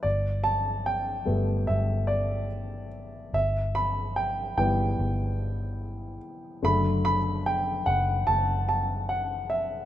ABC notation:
X:1
M:4/4
L:1/8
Q:1/4=73
K:G
V:1 name="Grand piano"
d a g2 e d2 z | e b g g4 z | b b g f a a f e |]
V:2 name="Grand piano" clef=bass
z3 [G,A,B,]3 z2 | z3 [E,G,B,]4- [E,G,B,] | [D,F,A,] z6 z |]
V:3 name="Fingered electric bass" clef=bass
G,,,3 G,,, G,,,4 | G,,,3 G,,, G,,,3 z | F,,,3 F,,, F,,,4 |]